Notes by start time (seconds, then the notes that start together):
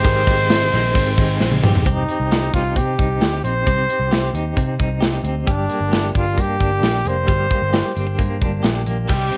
Already playing: G#3 C4 D#4 G4 C5
0.04 G#1 D#3 G#3 C4 D#4 G4 A#4, kick, hi-hat pedal, open hi-hat
0.27 G#3 C4 D#4 G4, kick, hi-hat pedal, open hi-hat
0.49 G#3 C4 D#4 G4, snare, hi-hat pedal, open hi-hat
0.72 A#1 G#3 C4 D#4 G4, snare, hi-hat pedal, open hi-hat
0.95 G#1 G#3 C4 D#4 G4, kick, hi-hat pedal, open hi-hat
1.18 G#1 G#3 C4 D#4 G4, kick, hi-hat pedal, open hi-hat
1.40 A#1 G#3 C4 D#4 G4, snare
1.51 high tom
1.63 A#1 C4 D#4 G4, mid tom
1.75 floor tom
1.86 C2 C4 D#4 G4, kick, closed hi-hat
2.08 C4, closed hi-hat
2.20 C2
2.31 G4, snare, closed hi-hat
2.53 C2 D#4 F4, kick, snare, closed hi-hat
2.76 C3 C4 G4, kick, closed hi-hat
2.98 C2 D#4, kick, closed hi-hat
3.21 D2 G4, snare, closed hi-hat
3.44 A#1 C4 C5, closed hi-hat
3.66 C2 C4 G4, kick, closed hi-hat
3.89 C4, closed hi-hat
4.00 C2
4.11 G4, snare, closed hi-hat
4.33 D#2 D#4, closed hi-hat
4.57 C3 C4, kick, closed hi-hat
4.79 C2 D#4, kick, closed hi-hat
5.01 G4, snare, closed hi-hat
5.24 D2 C4, closed hi-hat
5.47 G1 G3 D4 G4, kick, closed hi-hat
5.69 A#3, closed hi-hat
5.80 G1
5.92 G4, snare, closed hi-hat
6.15 G1 D4 F4, kick, closed hi-hat
6.38 G2 A#3 G4, kick, closed hi-hat
6.60 G1 D4, kick, closed hi-hat
6.82 A#1 G4, snare, closed hi-hat
7.05 F1 A#3 C5, closed hi-hat
7.27 G1 G3 G4, kick, closed hi-hat
7.50 A#3, kick, closed hi-hat
7.62 G1
7.73 G4, snare, closed hi-hat
7.96 G1 C4, closed hi-hat
8.07 D4
8.19 G2 A#3, kick, closed hi-hat
8.41 G1 D4, kick, closed hi-hat
8.63 A#1 G4, snare, closed hi-hat
8.87 A#1 A#3, closed hi-hat
9.08 C2 C3 G3 C4 D#4 G4, kick, closed hi-hat
9.12 G4
9.31 C4, closed hi-hat